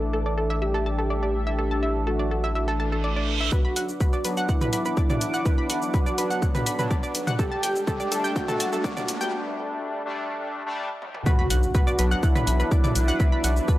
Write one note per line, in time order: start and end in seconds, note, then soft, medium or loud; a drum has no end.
0.00 3.50 A1 medium
0.00 3.49 E3 medium
0.00 3.49 A3 medium
0.00 3.48 D4 medium
0.00 3.49 D4 medium
0.00 3.48 A4 medium
0.00 3.48 E5 medium
0.00 3.48 D6 medium
0.13 0.20 A4 medium
0.13 0.58 A4 medium
0.26 0.30 D5 medium
0.38 0.45 A4 medium
0.50 0.57 E5 loud
0.62 1.97 G4 loud
0.62 0.69 E5 medium
0.74 0.81 A4 loud
0.86 0.97 A5 medium
0.99 1.02 A4 medium
1.10 1.17 D5 medium
1.23 1.27 D5 medium
1.47 1.53 E5 loud
1.59 1.66 A4 medium
1.71 1.81 A5 medium
1.83 1.87 E5 medium
2.07 2.70 F#4 medium
2.07 2.14 A4 medium
2.19 2.23 D5 medium
2.31 2.38 A4 medium
2.44 2.50 E5 loud
2.55 2.62 E5 medium
2.55 reverse cymbal medium
2.68 2.74 A4 loud
2.80 2.90 A5 medium
2.92 2.96 A4 medium
3.04 3.11 D5 medium
3.16 3.20 D5 medium
3.41 3.47 E5 loud
3.52 9.29 D4 medium
3.52 3.97 F#4 loud
3.52 7.35 B4 medium
3.52 3.59 B4 medium
3.52 7.35 F#5 medium
3.52 9.29 D6 medium
3.52 kick loud
3.52 riser medium
3.52 shaker soft
3.65 3.74 B5 medium
3.76 3.92 B1 loud
3.76 3.80 F#5 medium
3.76 open hi-hat loud
3.76 shaker medium
3.89 shaker soft
4.00 4.45 F#4 medium
4.00 4.07 B4 medium
4.00 kick loud
4.00 shaker soft
4.13 4.17 D5 medium
4.13 shaker soft
4.25 4.40 B1 medium
4.25 6.15 F#3 medium
4.25 6.15 B3 medium
4.25 6.15 D4 medium
4.25 4.32 B4 medium
4.25 open hi-hat medium
4.25 shaker medium
4.37 4.44 F#5 loud
4.37 shaker soft
4.49 5.95 E4 loud
4.49 4.56 F#5 medium
4.49 kick loud
4.49 shaker soft
4.61 4.68 B4 loud
4.61 mid tom medium
4.61 shaker soft
4.73 4.89 B1 loud
4.73 4.84 B5 medium
4.73 open hi-hat loud
4.73 shaker medium
4.85 4.89 B4 medium
4.85 shaker soft
4.97 5.04 D5 medium
4.97 kick loud
4.97 shaker soft
5.10 5.14 D5 medium
5.10 mid tom medium
5.10 shaker soft
5.21 5.37 B1 medium
5.21 open hi-hat medium
5.21 shaker medium
5.34 5.40 F#5 loud
5.34 shaker soft
5.45 5.53 B4 medium
5.45 kick loud
5.45 shaker soft
5.58 5.68 B5 medium
5.70 5.86 B1 loud
5.70 5.74 F#5 medium
5.70 open hi-hat loud
5.70 shaker medium
5.82 shaker soft
5.94 6.57 F#4 medium
5.94 6.01 B4 medium
5.94 kick loud
5.94 shaker soft
6.06 6.10 D5 medium
6.06 shaker soft
6.18 6.34 B1 medium
6.18 6.76 F#3 medium
6.18 6.76 B3 medium
6.18 6.76 D4 loud
6.18 6.25 B4 medium
6.18 open hi-hat medium
6.18 shaker medium
6.30 6.37 F#5 loud
6.30 shaker soft
6.42 6.49 F#5 medium
6.42 kick loud
6.42 shaker soft
6.55 6.61 B4 loud
6.55 mid tom medium
6.55 shaker soft
6.66 6.82 B1 loud
6.66 6.77 B5 medium
6.66 open hi-hat loud
6.66 shaker medium
6.79 7.02 F#3 loud
6.79 7.02 B3 medium
6.79 7.02 D4 loud
6.79 6.83 B4 medium
6.79 mid tom medium
6.79 shaker soft
6.91 6.98 D5 medium
6.91 kick loud
6.91 shaker soft
7.03 7.07 D5 medium
7.03 shaker soft
7.15 7.31 B1 medium
7.15 open hi-hat loud
7.15 shaker medium
7.27 7.34 F#5 loud
7.27 mid tom medium
7.27 shaker soft
7.39 7.84 G4 loud
7.39 9.31 A4 medium
7.39 7.46 A4 medium
7.39 9.31 A5 medium
7.39 kick loud
7.39 shaker soft
7.52 7.61 A5 medium
7.63 7.79 G1 loud
7.63 7.67 G5 medium
7.63 open hi-hat loud
7.63 shaker medium
7.76 shaker soft
7.87 8.32 G4 medium
7.87 7.94 A4 medium
7.87 kick loud
7.87 shaker soft
8.00 8.04 D5 medium
8.00 shaker soft
8.12 8.27 G1 medium
8.12 10.02 G3 medium
8.12 10.02 A3 medium
8.12 10.02 D4 medium
8.12 8.19 A4 medium
8.12 open hi-hat loud
8.12 shaker medium
8.24 8.31 G5 loud
8.24 shaker soft
8.36 9.33 F#4 loud
8.36 8.43 G5 medium
8.36 kick loud
8.36 shaker soft
8.48 8.55 A4 loud
8.48 mid tom medium
8.48 shaker soft
8.60 8.76 G1 loud
8.60 8.71 A5 medium
8.60 open hi-hat loud
8.60 shaker medium
8.73 8.77 A4 medium
8.73 shaker soft
8.84 8.91 D5 medium
8.84 kick loud
8.84 shaker soft
8.97 9.01 D5 medium
8.97 mid tom medium
8.97 shaker soft
9.08 9.24 G1 medium
9.08 open hi-hat medium
9.08 shaker medium
9.21 9.27 G5 loud
9.21 shaker soft
10.05 10.63 G3 medium
10.05 10.63 A3 medium
10.05 10.63 D4 loud
10.66 10.89 G3 loud
10.66 10.89 A3 medium
10.66 10.89 D4 loud
11.02 high tom medium
11.15 mid tom medium
11.26 13.78 D4 medium
11.26 11.71 F#4 loud
11.26 11.33 B4 medium
11.26 13.78 B4 medium
11.26 13.18 F#5 medium
11.26 11.33 B5 medium
11.26 13.78 D6 medium
11.26 kick loud
11.26 impact medium
11.26 shaker soft
11.39 11.49 B5 medium
11.50 11.66 B1 loud
11.50 11.55 F#5 medium
11.50 11.55 F#6 medium
11.50 open hi-hat loud
11.50 shaker medium
11.63 shaker soft
11.74 12.19 F#4 medium
11.74 11.82 B4 medium
11.74 11.82 B5 medium
11.74 kick loud
11.74 shaker soft
11.87 11.91 D5 medium
11.87 11.91 D6 soft
11.87 shaker soft
11.99 12.15 B1 medium
11.99 13.78 F#3 medium
11.99 13.78 B3 medium
11.99 13.78 D4 loud
11.99 12.06 B4 medium
11.99 12.06 B5 medium
11.99 open hi-hat medium
11.99 shaker medium
12.11 12.18 F#5 loud
12.11 12.18 F#6 medium
12.11 shaker soft
12.23 13.70 E4 loud
12.23 12.30 F#5 medium
12.23 12.30 F#6 medium
12.23 kick loud
12.23 shaker soft
12.35 12.42 B4 loud
12.35 12.42 B5 medium
12.35 mid tom medium
12.35 shaker soft
12.47 12.63 B1 loud
12.47 12.58 B5 medium
12.47 open hi-hat loud
12.47 shaker medium
12.60 12.64 B4 medium
12.60 12.64 B5 medium
12.60 shaker soft
12.71 12.78 D5 medium
12.71 12.78 D6 medium
12.71 kick loud
12.71 shaker soft
12.84 12.88 D5 medium
12.84 12.88 D6 medium
12.84 mid tom medium
12.84 shaker soft
12.96 13.11 B1 medium
12.96 open hi-hat medium
12.96 shaker medium
13.08 13.15 F#5 loud
13.08 13.15 F#6 medium
13.08 shaker soft
13.20 13.27 B4 medium
13.20 13.78 E5 medium
13.20 13.27 B5 medium
13.20 kick loud
13.20 shaker soft
13.32 13.42 B5 medium
13.44 13.60 B1 loud
13.44 13.48 F#5 medium
13.44 13.48 F#6 medium
13.44 open hi-hat loud
13.44 shaker medium
13.56 shaker soft
13.68 13.78 F#4 loud
13.68 13.75 B4 medium
13.68 13.75 B5 medium
13.68 kick loud
13.68 shaker soft